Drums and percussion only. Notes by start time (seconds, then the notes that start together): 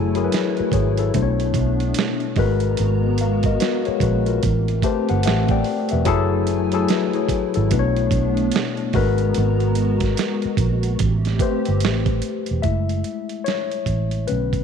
0.15 closed hi-hat
0.32 snare, closed hi-hat
0.57 closed hi-hat
0.72 kick, closed hi-hat
0.97 closed hi-hat
1.14 kick, closed hi-hat
1.40 closed hi-hat
1.54 kick, closed hi-hat
1.80 closed hi-hat
1.94 closed hi-hat
1.99 snare
2.20 closed hi-hat
2.36 kick, open hi-hat
2.60 closed hi-hat
2.77 closed hi-hat
3.18 closed hi-hat
3.43 kick, closed hi-hat
3.60 snare, closed hi-hat
3.85 closed hi-hat
4.00 kick, closed hi-hat
4.26 closed hi-hat
4.43 kick, closed hi-hat
4.68 closed hi-hat
4.82 kick, closed hi-hat
5.09 closed hi-hat
5.23 closed hi-hat
5.27 snare
5.48 kick, closed hi-hat
5.64 open hi-hat
5.89 closed hi-hat
6.05 kick, closed hi-hat
6.47 closed hi-hat
6.72 closed hi-hat
6.88 snare, closed hi-hat
7.13 closed hi-hat
7.29 kick, closed hi-hat
7.54 closed hi-hat
7.71 kick, closed hi-hat
7.97 closed hi-hat
8.11 kick, closed hi-hat
8.37 closed hi-hat
8.52 closed hi-hat
8.56 snare
8.77 closed hi-hat
8.93 kick, open hi-hat
9.18 closed hi-hat
9.35 closed hi-hat
9.60 closed hi-hat
9.75 closed hi-hat
10.00 kick, snare, closed hi-hat
10.17 snare, closed hi-hat
10.42 closed hi-hat
10.57 kick, closed hi-hat
10.83 closed hi-hat
10.99 kick, closed hi-hat
11.25 snare, closed hi-hat
11.39 kick, closed hi-hat
11.65 closed hi-hat
11.80 closed hi-hat
11.85 snare
12.06 kick, closed hi-hat
12.22 closed hi-hat
12.46 closed hi-hat
12.63 kick, closed hi-hat
12.89 closed hi-hat
13.04 closed hi-hat
13.29 closed hi-hat
13.46 snare, closed hi-hat
13.72 closed hi-hat
13.86 kick, closed hi-hat
14.11 closed hi-hat
14.28 closed hi-hat
14.53 kick, closed hi-hat